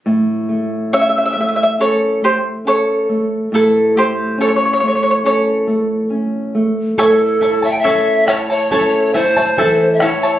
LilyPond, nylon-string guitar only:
\new Staff \with { instrumentName = "Nylon-string guitar" } { \time 4/4 \key a \phrygian \tempo 4 = 69 a,8 a8 cis'8 a8 cis'8 a8 cis'8 a8 | a,8 a8 cis'8 a8 cis'8 a8 cis'8 a8 | a,8 e'8 cis'8 e'8 cis'8 e'8 e8 e'8 | }